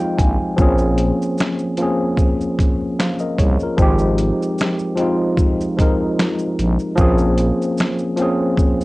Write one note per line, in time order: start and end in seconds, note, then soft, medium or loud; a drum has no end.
0.00 0.57 F3 loud
0.00 0.60 G#3 medium
0.00 0.59 C4 medium
0.00 0.60 D#4 medium
0.00 0.60 F4 loud
0.00 0.59 D#5 medium
0.00 0.59 F5 medium
0.00 0.16 G5 medium
0.18 0.38 A#1 medium
0.18 0.55 G#5 medium
0.18 kick medium
0.18 closed hi-hat medium
0.18 shaker soft
0.57 1.11 A#1 loud
0.57 1.58 F3 loud
0.57 1.59 A#3 medium
0.57 1.59 C4 medium
0.57 1.60 C#4 loud
0.57 kick loud
0.57 shaker medium
0.62 1.61 G#4 loud
0.78 shaker soft
0.98 closed hi-hat medium
0.98 shaker soft
1.22 shaker soft
1.38 finger snap medium
1.38 snare loud
1.38 shaker medium
1.59 shaker soft
1.77 3.11 F3 medium
1.77 3.11 A#3 medium
1.77 3.12 C4 medium
1.77 closed hi-hat medium
1.77 shaker soft
1.81 3.13 C#4 medium
1.81 3.00 G#4 medium
2.17 kick medium
2.17 shaker medium
2.41 shaker soft
2.59 kick medium
2.59 closed hi-hat medium
2.59 shaker soft
2.99 3.20 C5 medium
2.99 3.20 F5 medium
2.99 finger snap loud
2.99 snare loud
2.99 shaker medium
3.19 3.37 A#4 medium
3.19 3.37 D#5 medium
3.19 shaker medium
3.39 3.58 C2 medium
3.39 3.60 G#4 medium
3.39 3.60 C#5 medium
3.39 kick medium
3.39 closed hi-hat medium
3.39 shaker soft
3.60 4.00 A#4 medium
3.60 shaker soft
3.64 4.00 F4 medium
3.77 4.32 G#1 loud
3.77 4.78 F3 loud
3.77 4.79 G#3 loud
3.77 4.80 C4 loud
3.77 kick loud
3.77 shaker medium
3.81 4.80 D#4 medium
3.81 4.81 G4 loud
3.98 shaker medium
4.18 closed hi-hat medium
4.18 shaker medium
4.42 shaker soft
4.58 finger snap medium
4.58 snare loud
4.58 shaker medium
4.79 shaker soft
4.96 5.64 F3 medium
4.96 5.65 G#3 medium
4.96 5.66 C4 medium
4.96 closed hi-hat medium
4.96 shaker soft
5.00 5.66 D#4 medium
5.00 5.67 F4 loud
5.37 kick medium
5.37 shaker medium
5.61 shaker medium
5.77 6.78 F3 medium
5.77 6.79 G#3 medium
5.77 6.80 C4 medium
5.77 6.80 D#4 medium
5.77 kick loud
5.77 closed hi-hat medium
5.77 shaker soft
5.82 6.81 A#4 medium
6.19 finger snap loud
6.19 snare loud
6.19 shaker medium
6.38 shaker soft
6.59 6.78 A#1 medium
6.59 closed hi-hat medium
6.59 shaker soft
6.79 shaker soft
6.96 7.51 A#1 loud
6.96 7.98 F3 loud
6.96 7.98 A#3 loud
6.96 7.99 C4 loud
6.96 kick loud
6.96 shaker medium
7.00 8.00 C#4 medium
7.00 8.00 G#4 loud
7.18 shaker medium
7.38 closed hi-hat medium
7.38 shaker medium
7.62 shaker medium
7.78 finger snap medium
7.78 snare loud
7.78 shaker medium
7.99 shaker soft
8.17 8.84 F3 medium
8.17 8.84 A#3 medium
8.17 8.84 C4 medium
8.17 8.84 C#4 medium
8.17 closed hi-hat medium
8.17 shaker soft
8.22 8.84 G#4 loud
8.57 kick medium
8.57 shaker medium
8.81 shaker medium